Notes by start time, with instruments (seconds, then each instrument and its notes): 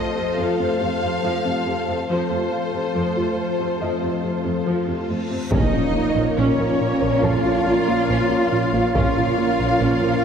Already playing: analog synth pad F3 A3 F4 C5, viola section F4, violin section A4 C5 D#5
0.16 cello section F2, viola section C3, synth pluck F4
0.38 cello section F2, viola section F3, synth pluck F3, violin section F5
0.59 cello section F2, viola section C3, synth pluck C4
0.81 cello section F2, viola section C3, synth pluck C4
1.03 cello section F2, viola section C3, synth pluck C4
1.23 cello section F2, synth pluck F3, viola section F3
1.45 cello section F2, viola section C3, synth pluck C4
1.67 cello section F2, viola section C3, synth pluck A3
1.88 cello section F2, viola section C3, synth pluck C4
2.09 cello section F2, analog synth pad F3 A3 F4 C5, synth pluck F3, viola section F3 F4, violin section A4 C5, reverse cymbal
2.31 cello section F2, viola section C3, synth pluck A3
2.52 felt piano F5
2.74 cello section F2, viola section C3, synth pluck F4
2.95 cello section F2, viola section F3, synth pluck F3
3.17 cello section F2, viola section C3, synth pluck F4
3.59 cello section F2, viola section C3, synth pluck F4
3.81 cello section F2, viola section F3, synth pluck F3, felt piano D#5
4.02 cello section F2, viola section C3, synth pluck C4
4.23 cello section F2, viola section C3, synth pluck C4
4.45 cello section F2, viola section C3, synth pluck C4
4.66 cello section F2, viola section F3, synth pluck F3
4.87 cello section F2, viola section C3, synth pluck C4
5.09 cello section F2, viola section C3, synth pluck A3
5.30 cello section F2, viola section C3, synth pluck C4
5.51 double bass section A#1, analog synth bass A#2, trombone section A#2 A#3, analog synth pad F3 A#3 F4 C#5, synth pluck A#3, french horn section A#3 C#4, viola section C#4 A#4, cello section D#4, violin section C#5 D#5, taiko, impact
5.73 double bass section A#1, analog synth bass A#2, viola section F3, synth pluck C#4
5.95 analog synth bass A#3
6.16 double bass section A#1, analog synth bass A#2, viola section F3, synth pluck A#4
6.37 double bass section A#1, analog synth bass A#2, synth pluck A#3, viola section C#4, cello section C#4, violin section C#5
6.59 double bass section A#1, analog synth bass A#2, viola section F3, synth pluck A#4
6.81 analog synth bass A#2
7.02 double bass section A#1, analog synth bass A#2, viola section F3, synth pluck A#4
7.23 double bass section A#1, analog synth bass A#2, synth pluck A#3, viola section C#4, cello section F4, felt piano A4 A5, violin section F5, taiko
7.44 double bass section A#1, viola section F3, analog synth bass A#3, synth pluck F4
7.66 double bass section A#1, analog synth bass A#3, viola section A#3, synth pluck F4
7.87 double bass section A#1, viola section F3, analog synth bass A#3
8.09 double bass section A#1, analog synth bass A#2, synth pluck A#3, viola section C#4
8.30 double bass section A#1, viola section F3, analog synth bass A#3, synth pluck F4
8.52 double bass section A#1, analog synth bass A#2, viola section A#3, synth pluck C#4
8.73 double bass section A#1, viola section F3, analog synth bass A#3, synth pluck F4
8.94 double bass section A#1, analog synth bass A#2, trombone section A#2 A#3, analog synth pad F3 A#3 F4 C#5, french horn section A#3 C#4, synth pluck A#3, viola section C#4 A#4, cello section F4, violin section C#5 F5, taiko
9.16 double bass section A#1, analog synth bass A#2, viola section F3, synth pluck C#4
9.38 analog synth bass A#3
9.59 double bass section A#1, analog synth bass A#2, viola section F3, synth pluck A#4
9.80 double bass section A#1, analog synth bass A#2, synth pluck A#3, viola section C#4
10.02 double bass section A#1, analog synth bass A#2, viola section F3, synth pluck A#4